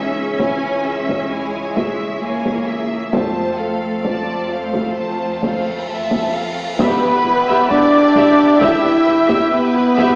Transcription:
0.00 0.29 C#2 medium
0.00 3.11 E3 soft
0.00 1.31 C#4 medium
0.00 0.40 G#4 soft
0.00 3.11 C#5 soft
0.00 0.40 E5 soft
0.39 1.21 C#2 medium
0.39 0.85 E4 soft
0.39 0.87 C#5 soft
0.39 0.85 G#5 soft
0.39 taiko medium
0.85 1.31 G#4 soft
0.85 1.31 E5 soft
0.85 1.32 E5 soft
1.09 taiko medium
1.31 2.12 C#2 medium
1.31 2.23 G#3 medium
1.31 1.74 E4 soft
1.31 1.74 C#5 soft
1.31 1.74 G#5 soft
1.75 2.23 G#4 soft
1.75 2.22 E5 soft
1.75 2.23 E5 soft
1.75 taiko medium
2.21 3.03 C#2 soft
2.21 3.12 A#3 medium
2.21 2.68 E4 soft
2.21 2.69 C#5 soft
2.21 2.68 G#5 soft
2.45 taiko medium
2.66 3.14 G#4 soft
2.66 3.13 E5 soft
2.66 3.15 E5 soft
3.12 3.94 F2 soft
3.12 5.84 A3 medium
3.12 6.42 F4 soft
3.12 3.56 F4 soft
3.12 6.42 C5 soft
3.12 3.57 C5 soft
3.12 3.56 A5 soft
3.12 taiko medium
3.12 cymbal swell soft
3.58 4.05 A4 soft
3.58 4.05 F5 soft
4.05 4.86 F2 soft
4.05 4.51 F4 soft
4.05 4.48 D5 soft
4.05 4.51 A5 soft
4.05 taiko medium
4.51 4.97 A4 soft
4.51 5.88 C5 soft
4.51 4.97 F5 soft
4.74 taiko medium
4.96 5.77 F2 soft
4.96 5.39 F4 soft
4.96 5.39 A5 soft
5.42 5.88 A4 soft
5.42 5.88 F5 soft
5.42 taiko medium
5.88 6.69 F2 soft
5.88 6.34 F4 soft
5.88 6.33 E5 soft
5.88 6.34 A5 soft
6.11 taiko medium
6.34 6.80 A4 soft
6.34 6.79 F5 soft
6.34 6.80 F5 soft
6.78 6.87 E1 medium
6.78 6.88 E2 medium
6.78 7.67 B3 medium
6.78 10.15 E4 medium
6.78 10.15 G4 medium
6.78 7.01 G4 medium
6.78 7.66 B4 medium
6.78 7.67 B4 medium
6.78 7.01 E5 medium
6.78 10.15 E5 medium
6.78 10.15 G5 medium
6.78 7.72 B5 medium
6.78 taiko medium
6.78 impact medium
7.02 7.11 E2 soft
7.02 7.10 B3 soft
7.02 7.10 G4 soft
7.24 7.33 E1 medium
7.24 7.32 E2 soft
7.24 7.33 E4 soft
7.24 7.33 B4 soft
7.48 7.56 E2 medium
7.48 7.69 G4 medium
7.48 7.69 E5 medium
7.69 7.79 E1 medium
7.69 7.79 E2 soft
7.69 7.79 B3 soft
7.69 8.61 D4 medium
7.69 7.79 G4 soft
7.69 8.61 D5 medium
7.69 8.60 D5 medium
7.69 8.63 D5 medium
7.69 8.63 D6 medium
7.69 taiko low medium
7.92 8.02 E2 soft
7.92 8.00 E4 medium
7.92 8.00 B4 soft
8.15 8.24 E1 medium
8.15 8.24 E2 medium
8.15 8.37 G4 medium
8.15 8.37 E5 medium
8.15 taiko medium
8.38 8.47 E2 soft
8.38 8.46 B3 medium
8.38 8.46 G4 soft
8.60 8.70 E1 medium
8.60 8.69 E2 medium
8.60 9.52 E4 medium
8.60 8.82 G4 medium
8.60 8.82 E5 medium
8.60 9.52 E5 medium
8.60 9.53 E5 medium
8.60 9.55 E6 medium
8.60 taiko medium
8.83 8.92 E2 medium
8.83 8.91 B3 soft
8.83 8.91 G4 medium
9.05 9.16 E1 medium
9.05 9.15 E2 soft
9.05 9.13 E4 soft
9.05 9.13 B4 soft
9.28 9.38 E2 medium
9.28 9.50 G4 medium
9.28 9.50 E5 medium
9.28 taiko medium
9.52 10.15 B3 medium
9.52 10.15 B4 medium
9.52 10.15 B5 medium
9.74 9.84 E2 medium
9.74 9.82 E4 medium
9.74 9.82 B4 medium
9.97 10.07 E1 medium
9.97 10.06 E2 medium
9.97 10.15 G4 medium
9.97 10.15 E5 medium
9.97 taiko medium

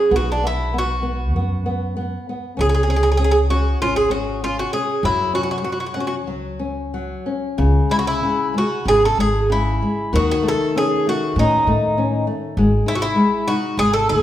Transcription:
0.00 0.13 G#4 medium
0.11 1.35 B1 medium
0.11 0.42 B3 medium
0.16 0.29 F#4 medium
0.32 0.45 D4 medium
0.44 0.73 B3 soft
0.44 0.76 E4 medium
0.74 1.01 B3 soft
0.78 1.95 F#4 medium
1.03 1.33 B3 medium
1.35 2.15 F#2 medium
1.35 1.65 B3 soft
1.66 1.95 B3 soft
1.97 2.27 B3 medium
2.29 2.56 B3 soft
2.57 3.81 C#2 medium
2.57 2.87 C#4 medium
2.57 2.66 G#4 medium
2.69 2.73 G#4 medium
2.74 2.80 G#4 medium
2.83 2.88 G#4 medium
2.88 3.18 C#4 soft
2.88 2.95 G#4 medium
2.96 3.02 G#4 medium
3.03 3.09 G#4 medium
3.12 3.16 G#4 medium
3.17 3.48 C#4 soft
3.17 3.23 G#4 medium
3.24 3.30 G#4 medium
3.31 3.38 G#4 medium
3.50 3.79 C#4 medium
3.50 3.78 F#4 medium
3.81 4.61 G#1 medium
3.81 4.09 C#4 medium
3.81 3.96 F4 medium
3.96 4.11 G#4 medium
4.10 4.40 C#4 medium
4.10 4.40 F#4 medium
4.44 4.73 C#4 medium
4.44 4.57 F4 medium
4.59 4.73 F#4 medium
4.73 5.03 C#4 soft
4.73 5.05 G#4 medium
5.03 6.28 F#2 medium
5.03 5.63 F#3 medium
5.03 5.33 E4 medium
5.33 5.63 C#4 soft
5.33 5.41 F#4 medium
5.43 5.49 F#4 soft
5.51 5.57 F#4 medium
5.58 5.63 F#4 soft
5.64 5.94 F#3 soft
5.64 5.71 F#4 soft
5.72 5.78 F#4 soft
5.80 5.85 F#4 soft
5.86 5.93 F#4 soft
5.94 6.27 C#4 medium
5.94 5.99 F#4 soft
6.00 6.06 F#4 soft
6.07 6.14 F#4 medium
6.27 7.13 C#2 medium
6.27 6.59 F#3 soft
6.59 6.92 C#4 soft
6.94 7.25 F#3 soft
7.26 7.57 C#4 soft
7.58 7.79 C#2 medium
7.58 8.22 C#3 medium
7.89 8.21 G#3 soft
7.89 7.98 E4 medium
7.99 8.05 F#4 medium
8.07 8.57 E4 medium
8.23 8.53 C#3 soft
8.54 8.85 G#3 soft
8.54 8.88 F#4 medium
8.85 9.06 G#1 medium
8.85 9.16 C#3 medium
8.85 9.03 G#4 loud
9.05 9.19 A4 medium
9.17 9.79 G#1 medium
9.17 9.47 G#3 soft
9.17 9.48 G#4 medium
9.50 9.79 C#3 medium
9.50 10.15 E4 medium
9.82 10.11 G#3 soft
10.13 10.32 D#2 medium
10.13 12.53 D#3 medium
10.13 10.29 F#4 medium
10.31 10.45 F#4 medium
10.43 10.72 A3 soft
10.48 10.77 A4 medium
10.76 11.04 C#4 soft
10.76 11.07 G#4 medium
11.07 11.35 A3 soft
11.07 11.38 F#4 medium
11.36 11.55 A2 medium
11.36 11.66 C#4 medium
11.36 12.24 D#4 medium
11.67 12.25 A2 medium
11.67 11.96 A3 medium
11.98 12.26 C#4 medium
12.27 12.56 A3 soft
12.57 12.76 G#1 medium
12.57 13.15 G#3 medium
12.86 13.16 D#4 soft
12.86 12.94 E4 medium
12.95 13.01 F#4 medium
13.02 13.49 E4 medium
13.16 13.46 G#3 medium
13.47 13.77 D#4 medium
13.47 13.76 F#4 medium
13.77 14.11 G#1 medium
13.77 14.23 G#3 medium
13.77 13.93 G#4 loud
13.93 14.09 A4 medium
14.09 14.23 D#2 medium
14.09 14.23 D#4 soft
14.09 14.23 G#4 medium

